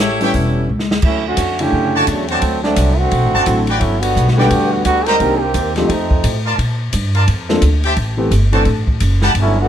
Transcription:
Already playing: A1 A3 E4 G4 C#5
0.20 G3 B3 C#4 E4 G4 C#5 E5 G5, open hi-hat
0.34 E1, kick, open hi-hat
0.69 C#2
0.79 snare
0.91 snare
1.02 D2 F#3 A3 C#4 E4, kick, crash
1.27 D3 A3 C#4 F#4
1.37 F2, kick, hi-hat pedal, ride
1.59 C#3 D3 A3 C#4 E4 G4, ride
1.72 F#2, kick
1.95 D3 A3 C#4 F#4 C#5 D5 A5
2.07 E2 C#3 F#3 A3 D4, kick, hi-hat pedal, ride
2.28 D3 F#3 A3 C4 F#4 C5 D5 A5, ride
2.42 D2, kick, ride
2.63 F#3 A3 C4 D4, snare
2.76 C2, kick, hi-hat pedal, ride
2.97 D3 A3 C4 F#4
3.11 B1, kick, ride
3.24 A1
3.34 F#1 F#4 C5 D5 A5
3.46 A1 D3 F#3 A3 C4 E4, kick, hi-hat pedal, ride
3.67 F#4 B4 D5 G5, ride
3.78 G1 F#3 A3 C#4 E4, kick, ride
4.00 D3 G3 B3 F#4, ride
4.16 B1, kick, hi-hat pedal
4.28 F#4, snare
4.36 D3 G3 A3 B3 F#4 G4 B4 D5 F#5 G5
4.40 snare
4.51 E2, kick, ride
4.72 D3 G3 B3 F#4
4.85 D2 D3 G3 B3 F#4, kick, hi-hat pedal, ride
5.06 G3 C4 D#4 G4 A#4 C5 D#5 A#5, snare, ride
5.20 C2 D#3 A#3 C4 D4 G4, kick, ride
5.40 D#3 A#3 C4 G4
5.54 D#2, kick, hi-hat pedal, ride
5.76 F3 A3 C4 D#4 G4, snare, ride
5.89 F2, kick, ride
6.11 kick
6.24 A2, kick, hi-hat pedal, ride
6.45 F4 A#4 D5 A5
6.58 A#2, kick, ride
6.93 G2, kick, hi-hat pedal, ride
7.15 F4 A#4 D5 A5, ride
7.28 F2, kick, ride
7.49 F3 A#3 C4 D4 A4, snare
7.62 D2, kick, hi-hat pedal, ride
7.84 G4 C5 E5 A5, ride
7.96 A1, kick, ride
8.17 E3 A3 B3 C4 G4
8.31 G1, kick, hi-hat pedal, ride
8.52 E3 A3 C4 D4 F#4 A4 C5 D5 A5, ride
8.65 A1, kick, ride
8.87 kick
9.00 F#1, kick, hi-hat pedal, ride
9.22 G4 B4 F#5 A5, snare
9.34 G1, kick, ride
9.40 F#3 A3 C#4 E4
9.60 D3 A3 B3 F#4

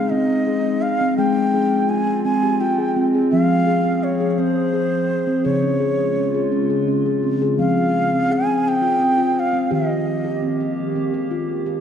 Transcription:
Already playing: G#3 C4 D#4 G#4 F5
0.10 C4 D#5
0.47 G#4
0.82 F5
1.01 C4
1.18 G#3 F4 G#4 G5
1.54 G#4
1.89 C4 G#5
2.07 G#4
2.24 C4 G#5
2.43 G4
2.61 F4 G5
2.78 G#4
2.97 C4
3.15 G#4
3.31 F3 C4 G#4 F5
3.67 G#4
3.85 C4
4.04 C#5
4.20 G#4
4.31 C#5
4.39 C4 C5
4.73 G#4
5.27 C4
5.45 C#3 G#3 F4 G#4 C#5
5.63 C#4
5.80 G#4
6.16 C#4
6.34 G#4
6.52 C#4
6.70 G#4
6.88 C#4
7.06 G#4
7.23 C4
7.42 G#4
7.58 F3 C4 G#4 F5
7.77 F4
8.12 C4
8.30 G#4 G#5
8.47 C4
8.68 G5
8.82 F4
9.00 C4
9.17 F4
9.39 F5
9.53 C4
9.71 D#3 A#3 G4 D#5
9.89 F4
10.25 G4
10.42 C4
10.60 G4
10.96 C4
11.14 G4
11.31 F4
11.66 G4

